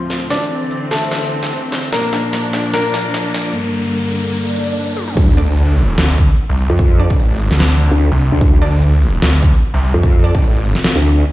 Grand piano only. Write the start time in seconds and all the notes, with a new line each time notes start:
Already playing: C4 C5
0.30 D4 D5
0.91 A3 A4
1.93 A#3 A#4
2.74 A#3 A#4